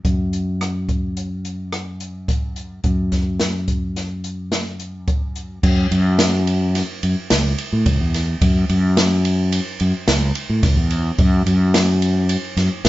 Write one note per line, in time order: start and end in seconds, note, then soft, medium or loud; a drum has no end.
0.05 2.80 F#2 medium
0.05 kick medium
0.05 closed hi-hat medium
0.33 closed hi-hat soft
0.61 cross-stick medium
0.61 closed hi-hat medium
0.89 kick medium
0.89 closed hi-hat soft
1.17 closed hi-hat medium
1.45 closed hi-hat medium
1.73 cross-stick medium
1.73 closed hi-hat medium
2.00 closed hi-hat soft
2.28 kick medium
2.28 closed hi-hat medium
2.56 closed hi-hat soft
2.84 5.59 F#2 medium
2.84 kick medium
2.84 closed hi-hat medium
3.12 kick medium
3.12 snare soft
3.12 closed hi-hat medium
3.40 snare medium
3.40 closed hi-hat medium
3.68 kick medium
3.68 closed hi-hat medium
3.96 snare soft
3.96 closed hi-hat medium
4.24 closed hi-hat medium
4.52 snare medium
4.52 closed hi-hat medium
4.80 closed hi-hat medium
5.08 kick medium
5.08 closed hi-hat medium
5.36 closed hi-hat soft
5.63 5.86 F#2 medium
5.63 kick medium
5.63 crash medium
5.91 6.81 F#2 medium
5.91 ride medium
6.19 snare loud
6.19 ride medium
6.47 ride medium
6.75 snare soft
6.75 ride medium
7.03 7.14 F#2 medium
7.03 ride medium
7.30 7.53 C#2 medium
7.30 snare loud
7.30 ride medium
7.58 ride medium
7.73 7.84 A2 medium
7.86 7.97 C#2 loud
7.86 kick loud
7.86 ride medium
8.00 8.34 E2 medium
8.14 snare soft
8.14 ride medium
8.41 8.64 F#2 medium
8.41 kick medium
8.41 ride medium
8.69 9.59 F#2 medium
8.69 ride medium
8.97 snare loud
8.97 ride medium
9.25 ride medium
9.52 ride medium
9.80 9.92 F#2 medium
9.80 ride medium
10.08 10.30 C#2 loud
10.08 snare loud
10.08 ride medium
10.35 ride medium
10.50 10.61 A2 medium
10.63 10.74 C#2 loud
10.63 kick loud
10.63 snare soft
10.63 ride medium
10.76 11.10 E2 medium
10.90 ride medium
11.18 11.41 F#2 loud
11.18 kick medium
11.18 ride medium
11.46 12.35 F#2 medium
11.46 ride medium
11.74 snare loud
11.74 ride medium
12.02 ride medium
12.29 ride medium
12.57 12.68 F#2 medium
12.57 snare soft
12.57 ride medium
12.85 12.89 B1 loud
12.85 snare loud
12.85 ride medium